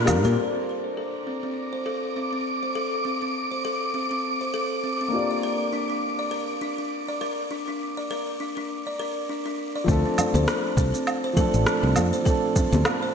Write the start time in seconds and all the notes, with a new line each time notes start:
Already playing: F4 A#4
0.05 F2 G3 A#3 D4 F4 A#4, low woodblock, shaker
0.24 A#2 A#4, high conga, shaker
0.34 C4 D4 F4 D6
0.39 A4 D5
0.55 C4
0.84 C5
0.97 A4
1.27 C4
1.43 C4
1.73 C5
1.86 A4
2.16 C4
2.33 C4
2.63 C5
2.75 A4
3.05 C4
3.22 C4
3.51 C5
3.65 A4
3.94 C4
4.11 C4
4.41 C5
4.54 A4
4.84 C4
5.01 C4
5.08 A#3 D4 F4
5.14 G4 D5
5.31 D5
5.43 A#4
5.72 D4
5.90 D4
6.19 D5
6.31 A#4
6.61 D4
6.78 D4
7.08 D5
7.21 A#4
7.51 D4
7.68 D4
7.97 D5
8.11 A#4
8.40 D4
8.57 D4
8.87 D5
8.99 A#4
9.29 D4
9.46 D4
9.75 D5
9.84 D2 F3 A3 C4
9.88 C4 D4 A4, kick, shaker
10.06 C4
10.18 low conga, low woodblock, shaker
10.34 D2 C5, high conga, shaker
10.48 A4, cross-stick, shaker
10.77 C2 C4, kick, shaker
10.94 C4, shaker
11.07 low woodblock, shaker
11.24 C5
11.33 F3 A3 C4 A4, kick, low conga, shaker
11.39 D4 A4
11.54 A1, shaker
11.67 C4, cross-stick, shaker
11.83 C2 C4
11.96 F2, high conga, low woodblock, shaker
12.13 C5, shaker
12.22 F3 A3 C4 A4
12.26 D4 A4, kick, shaker
12.56 C4, kick, low conga, shaker
12.72 D2 C4, high conga, shaker
12.85 cross-stick, low woodblock, shaker
13.03 C5